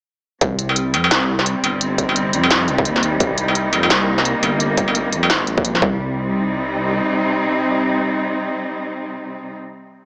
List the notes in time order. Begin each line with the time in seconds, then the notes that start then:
0.41 C2 C3, kick, closed hi-hat
0.59 closed hi-hat
0.64 G3
0.69 struck metal
0.76 closed hi-hat
0.94 F2, closed hi-hat, struck metal
1.04 struck metal
1.11 C2 C4, snare, closed hi-hat
1.39 snare
1.46 closed hi-hat
1.63 G1, closed hi-hat, struck metal
1.79 D#4, closed hi-hat
1.98 kick, closed hi-hat
2.09 struck metal
2.16 closed hi-hat
2.33 F2, closed hi-hat
2.44 struck metal
2.51 snare, closed hi-hat
2.68 C2, closed hi-hat
2.78 kick
2.85 D#2, closed hi-hat
2.96 snare
3.03 closed hi-hat
3.20 C2, kick, closed hi-hat
3.38 closed hi-hat
3.48 struck metal
3.55 closed hi-hat
3.61 A#3
3.73 F2, closed hi-hat, struck metal
3.83 struck metal
3.90 C2, snare, closed hi-hat
4.18 snare
4.25 closed hi-hat
4.43 G1, closed hi-hat, struck metal
4.60 closed hi-hat
4.77 kick, closed hi-hat
4.88 struck metal
4.95 closed hi-hat
5.12 F2, closed hi-hat
5.23 struck metal
5.30 G1, snare, closed hi-hat
5.47 A#1, closed hi-hat
5.58 kick
5.65 closed hi-hat
5.75 snare
5.82 C2 C3, kick
5.89 G3
6.12 C4 D#4